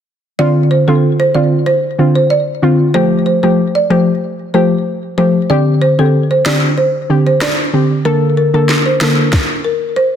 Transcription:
0.39 D3 C4 F4 D5
0.71 C5
0.88 D3 C4 F4 A4
1.20 C5
1.35 D3 C4 F4 D5
1.66 C5
1.98 D3 C4 F4
2.15 C5
2.30 D5
2.62 D3 C4 F4
2.94 F3 A3 G4 C5
3.26 C5
3.43 F3 A3 G4 C5
3.75 D5
3.90 F3 A3 G4 C5
4.54 F3 A3 G4 C5
5.18 F3 A3 G4 C5
5.50 D3 C4 G4 D5
5.82 C5
5.99 D3 C4 G4 A4
6.31 C5
6.46 D3 C4 G4 D5, snare
6.78 C5
7.09 D3 C4 G4
7.27 C5
7.41 D5, cross-stick, snare
7.73 D3 C4 G4
8.05 D3 A#3 A4 A#4
8.37 A#4
8.54 D3 A#3 A4 A#4
8.69 snare
8.86 C5
9.01 D3 A#3 A4 A#4, snare
9.33 kick, snare
9.64 A#4
9.96 C5

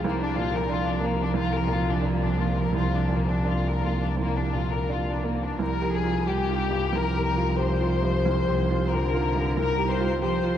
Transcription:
0.03 C2 F3 A#3
0.20 D4
0.36 A#2 F4
0.54 A#4
0.69 D4 F4
0.87 D4
1.01 A#3
1.20 D4
1.34 C2 F4
1.55 A#4
1.67 A#2 F4
1.89 D4
2.02 D4
2.06 A#3
2.22 D4
2.37 A#3 F4
2.57 A#4
2.73 C2 F4
2.94 D4
3.09 A#2 A#3
3.28 D4
3.45 D4 F4
3.67 A#4
3.81 A#3 F4
4.02 D4
4.17 C2 A#3
4.37 D4
4.53 A#2 F4
4.71 A#4
4.89 D4 F4
5.09 D4
5.25 A#3
5.42 D4
5.59 C2 F3 A#4
5.81 G4
5.95 G#4
6.04 F4
6.26 G3 G4
6.49 F4
6.70 G2
6.92 C2 F3 A#4
7.15 G4
7.25 A#4
7.37 F4
7.58 G4 C5
7.80 F4
8.03 G2
8.26 C2
8.48 G4
8.71 F4
8.92 D3 G4 A#4
9.13 F4
9.35 G2
9.56 C2 G3 A#4
9.78 G4
9.90 C5
10.00 F4
10.21 F3 G4 C5
10.44 F4

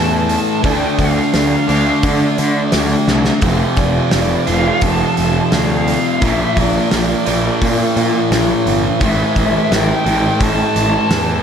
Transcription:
Already playing: E2 A2 E3 A3 A5
0.29 A5, open hi-hat
0.62 D2 D3 A3 D4 G5, kick, open hi-hat
0.99 D2 F5, kick, open hi-hat
1.34 D2 F5, snare, open hi-hat
1.68 D2 D3 A3 D4, open hi-hat
2.03 D3 D5, kick, open hi-hat
2.38 D3, open hi-hat
2.72 D2, snare, open hi-hat
3.07 C2, snare
3.25 snare
3.41 F1 F2 C3 F3, kick, open hi-hat
3.76 F1 D5, kick, open hi-hat
4.11 F1 D5, snare, open hi-hat
4.46 F1 F2 C3 F3 F5, open hi-hat
4.81 F1 A5, kick, open hi-hat
5.17 F1 A5, open hi-hat
5.52 D2 F5, snare, open hi-hat
5.88 open hi-hat
6.21 A#1 A#2 F3 A#3 E5, kick, open hi-hat
6.57 A#1 D5, kick, open hi-hat
6.91 A#1 D5, snare, open hi-hat
7.26 A#1 A#2 F3 A#3, open hi-hat
7.62 A#2, kick, open hi-hat
7.97 A#2, open hi-hat
8.31 A#1, snare, open hi-hat
8.66 G1, open hi-hat
9.00 A1 A2 E3 A3 E5, kick, open hi-hat
9.36 A1 E5, kick, open hi-hat
9.71 A1 G5, snare, open hi-hat
10.05 A1 A2 E3 A3, open hi-hat
10.41 A1 A5, kick, open hi-hat
10.76 A1, open hi-hat
11.11 E2, snare, open hi-hat

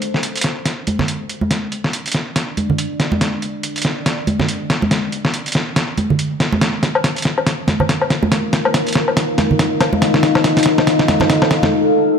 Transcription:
Already playing: D4 A4 D5
0.02 closed hi-hat
0.14 snare
0.23 closed hi-hat
0.36 closed hi-hat
0.37 closed hi-hat
0.41 snare, closed hi-hat
0.66 snare, closed hi-hat
0.87 closed hi-hat, high conga
0.99 snare, low conga
1.08 closed hi-hat
1.29 closed hi-hat
1.41 high conga
1.51 snare, closed hi-hat
1.72 closed hi-hat
1.84 snare
1.93 closed hi-hat
2.06 closed hi-hat
2.08 closed hi-hat
2.12 snare, closed hi-hat
2.36 snare, closed hi-hat
2.57 closed hi-hat, high conga
2.70 low conga
2.78 closed hi-hat
3.00 snare, closed hi-hat
3.12 high conga
3.21 snare, closed hi-hat
3.42 closed hi-hat
3.63 closed hi-hat
3.76 closed hi-hat
3.78 closed hi-hat
3.82 snare, closed hi-hat
4.06 snare, closed hi-hat
4.27 closed hi-hat, high conga
4.39 snare, low conga
4.49 closed hi-hat
4.70 snare, closed hi-hat
4.82 high conga
4.91 snare, closed hi-hat
5.12 closed hi-hat
5.25 snare
5.34 closed hi-hat
5.46 closed hi-hat
5.48 closed hi-hat
5.52 snare, closed hi-hat
5.76 snare, closed hi-hat
5.97 closed hi-hat, high conga
6.10 low conga
6.19 closed hi-hat
6.40 snare, closed hi-hat
6.52 high conga
6.61 D#4 A#4 F5, snare, closed hi-hat
6.83 snare, closed hi-hat, high bongo
6.95 low woodblock
7.04 snare, closed hi-hat
7.16 closed hi-hat
7.18 closed hi-hat
7.22 snare, closed hi-hat
7.38 high bongo, low woodblock
7.47 snare, closed hi-hat
7.68 snare, closed hi-hat, high conga
7.80 low conga, low woodblock
7.89 snare, closed hi-hat
8.02 low woodblock
8.10 snare, closed hi-hat
8.23 high bongo, high conga
8.32 snare, closed hi-hat
8.53 snare, closed hi-hat
8.65 low woodblock
8.74 snare, closed hi-hat
8.87 closed hi-hat
8.88 closed hi-hat
8.93 snare, closed hi-hat
9.08 low woodblock
9.17 snare, closed hi-hat
9.38 snare, closed hi-hat, high conga
9.51 low conga
9.59 snare, closed hi-hat
9.81 snare, closed hi-hat, low woodblock
9.93 high conga
10.02 A4, snare, closed hi-hat
10.14 snare
10.23 snare, closed hi-hat, high bongo
10.35 snare, low woodblock
10.44 snare, closed hi-hat
10.57 snare, closed hi-hat
10.59 closed hi-hat
10.63 snare, closed hi-hat
10.78 snare, high bongo, low woodblock
10.87 snare, closed hi-hat
10.99 snare
11.08 snare, closed hi-hat, high conga
11.20 snare, low conga, low woodblock
11.30 snare, closed hi-hat
11.42 snare, low woodblock
11.51 snare, closed hi-hat
11.63 snare, high bongo, high conga

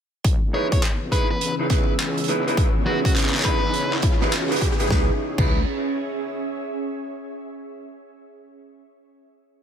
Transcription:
0.24 C#2 C#3 E3 B3 C#4, kick, closed hi-hat, riser
0.53 D#4 E4 G#4 B4 C#5 E6
0.72 E2 C#5, kick, closed hi-hat
0.78 G#4, closed hi-hat
0.83 clap
0.97 C#5
1.11 E2 D#4 E4 G#4 B4, kick, closed hi-hat
1.31 B4
1.41 closed hi-hat
1.59 D#4 E4 G#4 B4
1.70 C#2 D#4 E4 G#4 B4, kick, snare, closed hi-hat
1.99 clap, closed hi-hat
2.18 closed hi-hat
2.24 closed hi-hat
2.28 D#4 E4 G#4 B4, closed hi-hat
2.47 D#4 E4 G#4 B4, closed hi-hat
2.57 C#2, kick, closed hi-hat
2.86 D#4 E4 F#4 G#4 B4
3.05 C#2 F#4, kick, closed hi-hat
3.15 clap, closed hi-hat
3.20 clap
3.25 clap
3.29 clap
3.34 clap, snare
3.36 clap
3.39 clap
3.42 E2 D#4 E4 G#4 B4, kick, clap, closed hi-hat
3.74 closed hi-hat
3.93 clap
3.96 clap
3.98 clap
4.01 C#2, kick, clap, closed hi-hat
4.21 D#4 E4 G#4 B4, snare
4.33 clap, closed hi-hat
4.50 D#4 E4 G#4 B4, closed hi-hat
4.56 closed hi-hat
4.61 kick, closed hi-hat
4.79 D#4 E4 G#4 B4, closed hi-hat
4.90 C#2 C#3 B3 C#4 D#4 E4 G#4 B4, kick, snare
5.01 G#4
5.11 C#5
5.18 E5
5.38 C#2 D#4 E4 G#4 B4, kick, crash

